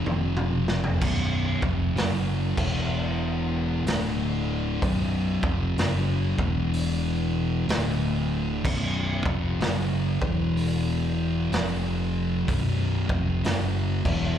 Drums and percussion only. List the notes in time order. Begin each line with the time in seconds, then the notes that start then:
0.06 high tom
0.37 mid tom
0.68 snare
0.84 floor tom
1.01 kick, crash
1.62 kick
1.97 snare, open hi-hat
2.57 kick, crash
3.87 snare, open hi-hat
4.82 kick, open hi-hat
5.43 kick
5.78 snare, open hi-hat
6.39 kick
6.74 open hi-hat
7.69 snare, open hi-hat
8.65 kick, crash
9.26 kick
9.61 snare, open hi-hat
10.22 kick
10.57 open hi-hat
11.52 snare, open hi-hat
12.48 kick, open hi-hat
13.09 kick
13.44 snare, open hi-hat
14.05 kick, crash